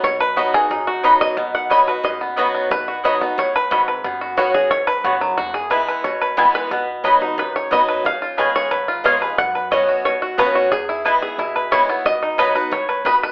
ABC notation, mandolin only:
X:1
M:4/4
L:1/16
Q:1/4=180
K:Bmix
V:1 name="Mandolin"
z4 [B,Fdb] z6 z [B,Fdb] z3 | z4 [B,Fdb] z6 z [B,Fdb] z3 | z4 [B,Fdb] z6 z [B,Fdb] z3 | z4 [B,Fcf] z6 z [B,Fcf] z3 |
z4 [B,EBg] z6 z [B,EBg] z3 | z4 [B,Fdb] z6 z [B,Fdb] z3 | z4 [B,^Ecg] z6 z [B,Ecg] z3 | z4 [B,Fcf] z6 z [B,Fcf] z3 |
z4 [B,EBg] z6 z [B,EBg] z3 | z4 [B,Fdb] z6 z [B,Fdb] z3 |]